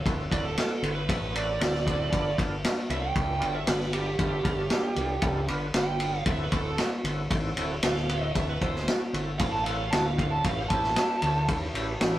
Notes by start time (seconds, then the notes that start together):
0.05 D1 C4 E4 F#4 A4, kick, ride
0.30 D1 C4 E4 F#4 A4 D5, kick, ride
0.45 A4
0.57 C4 E4 F#4 B4, snare, ride
0.81 G1 C4 E4 F#4 B4, ride
0.95 B4
1.07 A1 C4 E4 F#4 A4, kick, ride
1.32 C4 E4 F#4 A4 D5, ride
1.59 D1 C4 E4 F#4 A4, snare, ride
1.75 snare
1.86 C4 E4 F#4 A4, kick, ride
2.12 G1 B3 D4 F4 A4, kick, ride
2.38 G1 B3 D4 F4 A4, kick, ride
2.63 B3 D4 F4 A4, snare, ride
2.89 C2 B3 D4 F4 A4 E5, ride
3.02 G5
3.15 C#2 B3 D4 F4 A4, kick, ride
3.39 G1 B3 D4 F4 A4, ride
3.56 E5
3.66 G1 B3 D4 F4 A4 B4, snare, ride
3.81 snare
3.93 B3 D4 F4 G4 A4, ride
4.19 G1 B3 D4 F4 A4, kick, ride
4.43 G1 B3 D4 F4 A4, kick, ride
4.70 B3 D4 F4 A4, snare, ride
4.96 C2 B3 D4 F4 A4, ride
5.22 C#2 B3 D4 F4 A4, kick, ride
5.47 G1 B3 D4 F4 B4, ride
5.74 G1 B3 D4 F4 B4, snare, ride
5.78 G5
6.00 B3 D4 F4 A4, ride
6.26 D1 C4 E4 F#4 A4, kick, ride
6.31 E5
6.43 B4
6.52 D1 C4 E4 F#4 A4, kick, ride
6.56 A4
6.78 C4 E4 F#4 A4, snare, ride
7.04 G1 C4 E4 F#4 A4, ride
7.31 G#1 C4 E4 F#4 A4, kick, ride
7.57 D1 C4 E4 F#4 A4, ride
7.83 D1 C4 E4 F#4 A4 F5, snare, ride
7.96 snare
8.09 C4 E4 F#4 A4, ride
8.23 D#5
8.34 D1 C4 E4 F#4 A4 E5, kick, ride
8.49 B4
8.61 D1 C4 E4 F#4 A4 C5, kick, ride
8.76 snare
8.88 C4 E4 F#4 A4, snare, ride
9.13 G1 C4 E4 F#4 A4, ride
9.39 A1 C4 E4 F#4 A4 F5, kick, ride
9.52 A5
9.64 C4 E4 F#4 A4 F5, ride
9.77 F5
9.91 D1 C4 E4 F#4 A4 A5, snare, ride
10.06 F5
10.18 C4 E4 F#4 A4 F5, kick, ride
10.31 A5
10.44 A1 C#4 E4 G4 B4 F5, kick, ride
10.68 A1 A5, kick, ride
10.73 C#4 E4 G4 B4
10.84 snare
10.96 C#4, snare, ride
11.00 E4 G4 B4
11.22 D2 C#4 E4, ride
11.26 G4 B4
11.49 D#2 C#4 E4 G4 B4, kick, ride
11.74 A1 C#4 E4 G4 B4, ride
12.00 A1 C#4 E4 G4 B4, snare, ride
12.14 snare